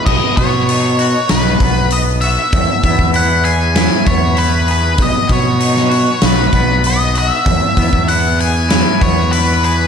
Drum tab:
CC |x---------------|----------------|----------------|----------------|
HH |--o-o-o-o-o-o-o-|o-o-o-o-o-o-o-o-|o-o-o-o-o-o-o-o-|o-o-o-o-o-o-o-o-|
SD |--------o-------|--------o-------|-----o--o-------|--------o-------|
BD |o-o-------o-----|o-oo------o-----|o-o-------o-----|o-oo------o-----|